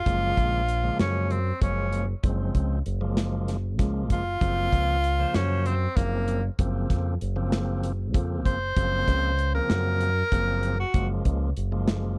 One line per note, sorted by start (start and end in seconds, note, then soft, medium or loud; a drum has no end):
0.00 0.96 F4 loud
0.06 0.32 F#1 medium
0.06 0.62 C#3 medium
0.06 0.62 F3 medium
0.06 0.62 G#3 medium
0.06 0.62 A#3 medium
0.06 kick medium
0.06 closed hi-hat medium
0.37 0.89 A#1 medium
0.37 kick medium
0.37 closed hi-hat medium
0.68 closed hi-hat medium
0.84 1.39 C#3 medium
0.84 1.39 F3 medium
0.84 1.40 G#3 medium
0.84 1.39 A#3 medium
0.99 1.51 F#2 medium
0.99 1.33 C#4 medium
0.99 snare medium
0.99 closed hi-hat medium
1.30 1.62 C4 medium
1.30 closed hi-hat medium
1.61 2.13 F#1 medium
1.61 2.06 C#3 medium
1.61 2.06 F3 medium
1.61 2.06 G#3 medium
1.61 2.06 A#3 medium
1.61 2.05 C#4 medium
1.61 kick loud
1.61 closed hi-hat medium
1.92 closed hi-hat medium
2.23 2.50 F#1 medium
2.23 2.79 C#3 medium
2.23 2.79 F3 medium
2.23 2.79 G#3 medium
2.23 2.79 C4 medium
2.23 kick loud
2.23 closed hi-hat medium
2.55 2.81 C#2 medium
2.55 kick medium
2.55 closed hi-hat medium
2.86 3.79 F#1 medium
2.86 closed hi-hat medium
3.01 3.57 C#3 medium
3.01 3.57 F3 medium
3.01 3.57 G#3 medium
3.01 3.57 A#3 medium
3.17 snare medium
3.17 closed hi-hat medium
3.48 snare soft
3.48 closed hi-hat medium
3.79 4.10 C#2 medium
3.79 4.23 C#3 medium
3.79 4.24 F3 medium
3.79 4.24 G#3 medium
3.79 4.24 A#3 medium
3.79 kick medium
3.79 snare soft
3.79 closed hi-hat medium
4.10 4.36 F#1 medium
4.10 5.37 F4 loud
4.10 kick medium
4.10 closed hi-hat medium
4.41 4.67 F#1 medium
4.41 4.97 C#3 medium
4.41 4.97 F3 medium
4.41 4.97 A#3 medium
4.41 4.97 C4 medium
4.41 kick medium
4.41 closed hi-hat medium
4.72 5.24 C#2 medium
4.72 kick medium
4.72 closed hi-hat medium
5.04 closed hi-hat medium
5.19 5.75 C#3 medium
5.19 5.75 F3 medium
5.19 5.75 A#3 medium
5.19 5.75 C5 medium
5.34 5.86 F#2 loud
5.34 5.68 C#4 medium
5.34 snare medium
5.34 closed hi-hat medium
5.66 5.98 C4 medium
5.66 closed hi-hat medium
5.96 6.48 F#1 medium
5.96 6.41 C#3 medium
5.96 6.41 F3 medium
5.96 6.43 A#3 medium
5.96 6.41 A#3 medium
5.96 6.42 C4 medium
5.96 kick loud
5.96 snare soft
5.96 closed hi-hat medium
6.28 closed hi-hat medium
6.59 6.85 F#1 medium
6.59 7.15 C#3 medium
6.59 7.15 F3 medium
6.59 7.15 A#3 medium
6.59 7.15 C4 medium
6.59 kick medium
6.59 closed hi-hat medium
6.90 7.16 F2 medium
6.90 kick medium
6.90 snare soft
6.90 closed hi-hat soft
7.21 8.15 F#1 medium
7.21 closed hi-hat medium
7.36 7.92 C#3 medium
7.36 7.92 F3 medium
7.36 7.92 A#3 medium
7.36 7.92 C4 loud
7.52 snare medium
7.52 closed hi-hat medium
7.83 closed hi-hat medium
8.14 8.46 F2 medium
8.14 8.59 C#3 medium
8.14 8.59 F3 medium
8.14 8.59 A#3 medium
8.14 8.59 C4 medium
8.14 kick loud
8.14 closed hi-hat medium
8.46 8.71 F#1 medium
8.46 9.51 C5 loud
8.46 kick medium
8.46 closed hi-hat medium
8.76 9.03 F#1 medium
8.76 9.32 C#3 medium
8.76 9.32 F3 medium
8.76 9.32 A#3 medium
8.76 9.32 C4 medium
8.76 kick medium
8.76 closed hi-hat medium
9.08 9.59 C#2 loud
9.08 kick medium
9.08 snare soft
9.08 closed hi-hat medium
9.39 closed hi-hat medium
9.55 10.10 C#3 medium
9.55 10.10 F3 medium
9.55 10.10 A#3 medium
9.55 10.10 C4 medium
9.55 10.75 A#4 loud
9.70 10.22 F#2 loud
9.70 snare loud
9.70 closed hi-hat medium
10.01 closed hi-hat medium
10.32 10.84 F#1 medium
10.32 10.77 C#3 medium
10.32 10.77 F3 medium
10.32 10.77 A#3 medium
10.32 10.77 C4 medium
10.32 kick medium
10.32 closed hi-hat medium
10.63 closed hi-hat medium
10.79 11.08 F#4 medium
10.94 11.20 F#1 medium
10.94 11.50 C#3 medium
10.94 11.50 F3 medium
10.94 11.50 G#3 medium
10.94 11.50 A#3 medium
10.94 kick loud
10.94 closed hi-hat medium
11.25 11.51 C#2 medium
11.25 kick medium
11.25 closed hi-hat medium
11.57 12.18 F#1 medium
11.57 closed hi-hat soft
11.72 12.18 C#3 medium
11.72 12.18 F3 medium
11.72 12.18 G#3 medium
11.72 12.18 A#3 medium
11.88 snare medium
11.88 closed hi-hat medium